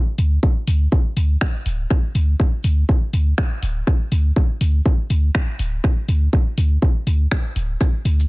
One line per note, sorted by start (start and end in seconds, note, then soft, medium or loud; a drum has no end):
0.18 0.38 D2 loud
0.18 open hi-hat medium
0.43 kick loud
0.67 0.87 D2 medium
0.67 open hi-hat medium
0.92 kick loud
1.17 1.37 D2 medium
1.17 open hi-hat medium
1.41 finger snap loud
1.41 kick loud
1.66 1.86 D1 medium
1.66 open hi-hat medium
1.90 kick loud
2.15 2.35 D2 loud
2.15 open hi-hat medium
2.40 kick loud
2.64 2.84 D2 medium
2.64 open hi-hat medium
2.89 kick loud
3.13 3.33 D2 medium
3.13 open hi-hat medium
3.38 finger snap loud
3.38 kick loud
3.63 3.83 D1 medium
3.63 open hi-hat medium
3.87 kick loud
4.12 4.32 D2 loud
4.12 open hi-hat medium
4.36 kick loud
4.61 4.81 D2 medium
4.61 open hi-hat medium
4.86 kick loud
5.10 5.30 D2 medium
5.10 open hi-hat medium
5.35 finger snap loud
5.35 kick loud
5.59 5.79 D1 medium
5.59 open hi-hat medium
5.84 kick loud
6.08 6.28 D2 medium
6.08 open hi-hat medium
6.33 kick loud
6.58 6.78 D2 medium
6.58 open hi-hat medium
6.82 kick loud
7.07 7.27 D2 medium
7.07 open hi-hat medium
7.31 finger snap loud
7.31 kick loud
7.56 7.76 D1 medium
7.56 open hi-hat medium
7.81 kick loud
7.81 shaker soft
8.05 8.25 D2 medium
8.05 open hi-hat medium
8.20 shaker soft